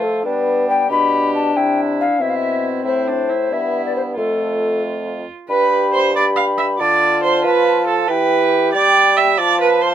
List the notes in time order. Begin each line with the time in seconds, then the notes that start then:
Already playing: F3 A3 F4
0.03 A4
0.25 G3 B3 D4 B4
0.69 G5
0.90 B2 D4 G4 B5
1.35 A5
1.56 C3 E4 G5
2.01 F5
2.20 B2 C4 E4 E5
2.30 F5
2.36 E5
2.84 A2 E4 C5
3.08 D4
3.29 E4
3.51 G2 B3 E5
3.85 D5
3.96 C5
4.17 F2 A3 F4 A4
5.49 G2 G4 B4 B5
5.94 C5
6.13 G4 D5 B5
6.36 F5
6.58 E5
6.78 D3 F4 D5 A5
7.23 C5
7.45 F3 B4
7.87 A4
8.08 E3 G4 B4 G5
8.73 G3 D5
9.17 E5
9.37 F3 F4 D5 A5
9.61 B4
9.81 C5